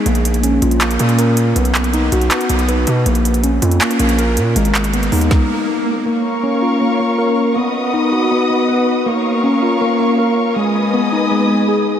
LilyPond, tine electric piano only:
\new Staff \with { instrumentName = "Tine electric piano" } { \time 4/4 \key bes \phrygian \tempo 4 = 160 bes4 des'8 f'8 bes8 bes8 bes'4 | b4 dis'8 fis'8 b8 b8 b'4 | bes4 des'8 f'8 bes8 bes8 bes'4 | aes4 ces'8 ees'2~ ees'8 |
bes4 des'8 f'8 bes8 bes8 bes'4 | b4 dis'8 fis'8 b8 b8 b'4 | bes4 des'8 f'8 bes8 bes8 bes'4 | aes4 ces'8 ees'8 aes8 aes8 aes'4 | }